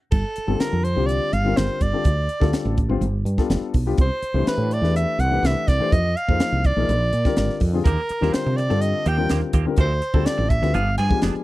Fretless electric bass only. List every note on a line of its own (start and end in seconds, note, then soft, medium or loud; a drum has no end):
0.12 0.23 G1 medium
0.38 muted fretless electric bass stroke soft
0.48 0.59 G1 medium
0.73 0.94 F2 medium
0.96 1.18 C2 medium
1.33 1.55 G1 loud
1.57 1.68 G1 medium
1.81 1.92 G1 medium
2.05 2.27 D2 medium
2.41 2.52 D2 medium
2.65 2.87 A1 loud
2.89 3.00 G#1 medium
3.01 3.23 G1 loud
3.25 3.37 G2 medium
3.50 3.60 F1 medium
3.61 muted fretless electric bass stroke soft
3.74 3.96 B1 medium
3.98 4.09 C2 medium
4.22 muted fretless electric bass stroke soft
4.34 4.45 C2 medium
4.58 4.80 A2 medium
4.82 5.04 E2 medium
5.19 5.41 C2 medium
5.43 5.54 C2 loud
5.68 5.79 C2 medium
5.92 6.14 F2 medium
6.29 6.39 F2 medium
6.52 6.74 C2 medium
6.76 6.87 B1 medium
6.89 7.11 A#1 loud
7.13 7.24 A#2 medium
7.38 7.48 G#1 medium
7.61 7.83 F2 medium
7.85 7.96 D#2 medium
8.10 muted fretless electric bass stroke soft
8.22 8.33 D#2 medium
8.46 8.68 C3 medium
8.71 8.92 G2 medium
9.06 9.28 D#2 loud
9.31 9.41 D#2 medium
9.54 9.65 D#2 medium
9.77 10.00 D2 medium
10.14 10.25 D2 medium
10.38 10.61 A1 medium
10.63 10.74 D2 medium
10.75 10.97 G1 loud
10.99 11.10 G2 medium
11.23 11.34 F1 medium
11.35 muted fretless electric bass stroke soft